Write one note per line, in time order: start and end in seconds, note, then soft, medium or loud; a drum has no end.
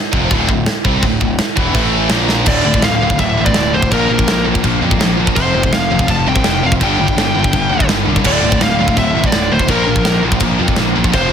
0.13 0.30 F1 medium
0.13 0.31 F2 loud
0.13 0.31 C3 loud
0.13 0.32 F3 loud
0.13 kick loud
0.31 0.48 D1 loud
0.31 0.48 D2 loud
0.31 0.49 A2 loud
0.31 0.50 D3 loud
0.31 kick loud
0.31 crash medium
0.49 0.66 D1 medium
0.49 0.64 D2 medium
0.49 0.64 A2 medium
0.49 kick loud
0.66 snare loud
0.66 crash medium
0.85 1.02 C2 loud
0.85 1.03 C3 loud
0.85 1.03 G3 loud
0.85 1.04 C4 loud
0.85 kick loud
1.02 1.20 D1 medium
1.02 1.18 D2 medium
1.02 1.18 A2 medium
1.02 kick medium
1.02 crash medium
1.21 1.38 D1 medium
1.21 1.36 D2 medium
1.21 1.36 A2 medium
1.21 kick medium
1.38 snare loud
1.38 crash medium
1.57 1.74 E1 medium
1.57 1.75 E2 loud
1.57 1.75 B2 medium
1.57 1.75 E3 loud
1.57 kick loud
1.74 2.09 A1 loud
1.74 2.11 A2 loud
1.74 2.11 E3 loud
1.74 2.12 A3 loud
1.74 kick loud
1.74 crash medium
2.09 2.45 A#1 loud
2.09 2.47 A#2 medium
2.09 2.47 F3 loud
2.09 2.48 A#3 loud
2.09 snare loud
2.09 crash medium
2.29 snare medium
2.46 2.63 D1 medium
2.46 2.65 D2 medium
2.46 2.65 A2 medium
2.46 2.82 D5 loud
2.46 kick loud
2.46 crash loud
2.46 china medium
2.50 2.66 D3 loud
2.65 2.81 D1 medium
2.65 2.75 D2 medium
2.65 2.74 A2 medium
2.65 2.85 D3 medium
2.74 2.83 D2 medium
2.74 2.83 A2 medium
2.74 kick loud
2.82 2.99 D1 loud
2.82 3.00 D2 medium
2.82 3.01 A2 medium
2.82 3.20 F5 medium
2.82 snare loud
2.82 china medium
2.87 3.03 D3 medium
3.01 3.17 D1 medium
3.01 3.10 D2 medium
3.01 3.10 A2 medium
3.01 3.21 D3 medium
3.10 3.19 D2 medium
3.10 3.19 A2 medium
3.10 kick loud
3.18 3.36 D1 loud
3.18 3.36 D2 medium
3.18 3.37 A2 medium
3.18 3.40 D3 loud
3.18 3.45 E5 medium
3.18 kick loud
3.18 china medium
3.37 3.54 A1 medium
3.37 3.46 D2 medium
3.37 3.46 A2 medium
3.41 3.57 D3 loud
3.45 3.54 D2 medium
3.45 3.54 A2 medium
3.45 3.74 D5 loud
3.45 kick medium
3.54 3.72 D1 medium
3.54 3.72 D2 medium
3.54 3.72 A2 medium
3.54 3.75 D3 medium
3.54 snare loud
3.54 china medium
3.74 3.90 D1 medium
3.74 3.82 D2 medium
3.74 3.82 A2 medium
3.74 3.92 D3 medium
3.74 3.92 C5 loud
3.82 3.91 D2 medium
3.82 3.92 A2 medium
3.82 kick loud
3.91 4.08 A#1 medium
3.91 4.09 A#2 loud
3.91 4.08 F3 loud
3.91 4.09 A#3 loud
3.91 4.43 A#4 medium
3.91 kick loud
3.91 china medium
4.09 4.26 A#1 loud
4.09 4.17 A#2 medium
4.09 4.17 F3 medium
4.09 4.28 A#3 loud
4.18 4.27 A#2 medium
4.18 4.28 F3 loud
4.18 kick medium
4.28 4.44 A#1 loud
4.28 4.44 A#2 medium
4.28 4.45 F3 loud
4.28 4.46 A#3 medium
4.28 snare loud
4.28 china medium
4.46 4.63 A#1 medium
4.46 4.54 A#2 medium
4.46 4.54 F3 loud
4.46 4.64 A#3 loud
4.55 4.63 A#2 medium
4.55 4.64 F3 medium
4.55 kick loud
4.64 4.80 A#1 loud
4.64 4.81 A#2 medium
4.64 4.81 F3 loud
4.64 4.83 A#3 loud
4.64 kick loud
4.64 china medium
4.81 4.98 F2 medium
4.81 4.91 A#2 medium
4.81 4.91 F3 medium
4.81 5.01 A#3 loud
4.91 5.00 A#2 medium
4.91 5.01 F3 medium
4.91 kick medium
4.99 5.16 A#1 loud
4.99 5.17 A#2 medium
4.99 5.17 F3 loud
4.99 5.19 A#3 medium
4.99 snare loud
4.99 china medium
5.18 5.34 A#1 medium
5.18 5.27 A#2 medium
5.18 5.27 F3 medium
5.18 5.36 A#3 medium
5.27 5.37 A#2 medium
5.27 5.37 F3 medium
5.27 kick medium
5.36 5.53 F1 medium
5.36 5.54 F2 loud
5.36 5.54 C3 loud
5.36 5.55 F3 loud
5.36 5.74 C5 medium
5.36 kick loud
5.36 china medium
5.55 5.71 F1 loud
5.55 5.64 F2 medium
5.55 5.63 C3 medium
5.55 5.73 F3 loud
5.63 5.71 F2 medium
5.63 5.71 C3 medium
5.63 kick loud
5.72 5.89 F1 medium
5.72 5.89 F2 medium
5.72 5.89 C3 medium
5.72 5.90 F3 medium
5.72 6.10 F5 medium
5.72 snare loud
5.72 china medium
5.91 6.07 F1 loud
5.91 5.99 F2 medium
5.91 5.99 C3 medium
5.91 6.09 F3 medium
5.99 6.08 F2 medium
5.99 6.08 C3 loud
5.99 kick medium
6.08 6.24 F1 loud
6.08 6.25 F2 medium
6.08 6.25 C3 medium
6.08 6.27 F3 loud
6.08 6.28 A5 loud
6.08 kick loud
6.08 china medium
6.26 6.43 C2 medium
6.26 6.34 F2 medium
6.26 6.34 C3 medium
6.26 6.44 F3 loud
6.26 6.65 G5 loud
6.35 6.43 F2 medium
6.35 6.43 C3 medium
6.35 kick medium
6.44 6.61 F1 loud
6.44 6.61 F2 medium
6.44 6.61 C3 medium
6.44 6.63 F3 loud
6.44 snare medium
6.44 china medium
6.63 6.79 F1 medium
6.63 6.71 F2 medium
6.63 6.71 C3 medium
6.63 6.80 F3 loud
6.63 6.71 F5 loud
6.72 6.81 F2 medium
6.72 6.81 C3 medium
6.72 kick medium
6.81 6.97 G1 loud
6.81 6.98 G2 loud
6.81 6.98 D3 loud
6.81 6.99 G3 loud
6.81 7.86 G5 medium
6.81 kick loud
6.81 china medium
7.00 7.15 G1 medium
7.00 7.08 G2 medium
7.00 7.08 D3 medium
7.00 7.18 G3 medium
7.08 7.18 G2 medium
7.08 7.18 D3 medium
7.08 kick loud
7.17 7.33 G1 loud
7.17 7.34 G2 medium
7.17 7.34 D3 medium
7.17 7.35 G3 loud
7.17 snare loud
7.17 china medium
7.36 7.52 G1 medium
7.36 7.45 G2 medium
7.36 7.44 D3 medium
7.36 7.52 G3 medium
7.44 7.54 G2 medium
7.44 7.54 D3 medium
7.44 kick loud
7.53 7.69 G1 loud
7.53 7.71 G2 medium
7.53 7.71 D3 medium
7.53 7.71 G3 loud
7.53 kick loud
7.53 china medium
7.70 7.87 D2 medium
7.70 7.81 G2 medium
7.70 7.81 D3 medium
7.70 7.89 G3 loud
7.80 7.90 G2 medium
7.80 7.90 D3 medium
7.80 kick loud
7.89 8.05 G1 loud
7.89 8.06 G2 medium
7.89 8.07 D3 medium
7.89 8.07 G3 medium
7.89 snare loud
7.89 china medium
8.07 8.23 C2 medium
8.07 8.17 G2 medium
8.07 8.17 D3 medium
8.07 8.25 G3 medium
8.16 8.26 G2 medium
8.16 8.26 D3 medium
8.16 kick medium
8.24 8.41 D1 medium
8.24 8.43 D2 medium
8.24 8.43 A2 medium
8.24 8.44 D3 loud
8.24 8.63 D5 loud
8.24 kick loud
8.24 crash loud
8.24 china medium
8.43 8.59 D1 loud
8.43 8.53 D2 medium
8.43 8.52 A2 medium
8.43 8.62 D3 loud
8.52 8.61 D2 medium
8.52 8.61 A2 medium
8.52 kick loud
8.61 8.77 D1 medium
8.61 8.78 D2 medium
8.61 8.78 A2 loud
8.61 8.80 D3 medium
8.61 8.98 F5 medium
8.61 snare loud
8.61 china medium
8.79 8.95 D1 medium
8.79 8.87 D2 medium
8.79 8.87 A2 medium
8.79 8.97 D3 loud
8.88 8.96 D2 medium
8.88 8.96 A2 medium
8.88 kick loud
8.97 9.13 D1 loud
8.97 9.14 D2 medium
8.97 9.14 A2 loud
8.97 9.16 D3 loud
8.97 9.26 E5 loud
8.97 kick loud
8.97 china medium
9.15 9.31 A1 medium
9.15 9.24 D2 medium
9.15 9.23 A2 medium
9.15 9.34 D3 loud
9.24 9.32 D2 medium
9.24 9.32 A2 medium
9.24 9.53 D5 medium
9.24 kick medium
9.32 9.50 D1 loud
9.32 9.49 D2 medium
9.32 9.50 A2 medium
9.32 9.52 D3 medium
9.32 snare loud
9.32 china medium
9.51 9.70 D1 medium
9.51 9.60 D2 medium
9.51 9.59 A2 medium
9.51 9.70 D3 loud
9.51 9.70 C5 medium
9.59 9.69 D2 medium
9.59 9.69 A2 medium
9.59 kick medium
9.68 9.85 A#1 medium
9.68 9.86 A#2 medium
9.68 9.87 F3 medium
9.68 9.87 A#3 loud
9.68 10.21 A#4 medium
9.68 kick loud
9.68 china medium
9.87 10.04 A#1 medium
9.87 9.96 A#2 medium
9.87 9.95 F3 medium
9.87 10.06 A#3 medium
9.96 10.05 A#2 medium
9.96 10.05 F3 medium
9.96 kick loud
10.05 10.21 A#1 loud
10.05 10.22 A#2 medium
10.05 10.22 F3 loud
10.05 10.24 A#3 loud
10.05 snare loud
10.05 china medium
10.24 10.40 A#1 medium
10.24 10.32 A#2 medium
10.24 10.32 F3 medium
10.24 10.42 A#3 medium
10.32 10.39 A#2 medium
10.32 10.40 F3 medium
10.32 kick loud
10.40 10.57 A#1 loud
10.40 10.57 A#2 medium
10.40 10.58 F3 medium
10.40 10.61 A#3 loud
10.40 kick loud
10.40 china medium
10.59 10.76 F2 medium
10.59 10.67 A#2 medium
10.59 10.67 F3 medium
10.59 10.78 A#3 medium
10.68 10.75 A#2 medium
10.68 10.76 F3 medium
10.68 kick loud
10.76 10.94 A#1 loud
10.76 10.94 A#2 medium
10.76 10.94 F3 loud
10.76 10.96 A#3 loud
10.76 snare loud
10.76 china medium
10.95 11.13 A#1 loud
10.95 11.03 A#2 medium
10.95 11.03 F3 loud
10.95 11.13 A#3 medium
11.04 11.11 A#2 medium
11.04 11.12 F3 medium
11.04 kick medium
11.12 11.30 F1 medium
11.12 11.30 F2 loud
11.12 11.30 C3 loud
11.12 11.31 F3 medium
11.12 11.33 C5 loud
11.12 kick loud
11.12 china medium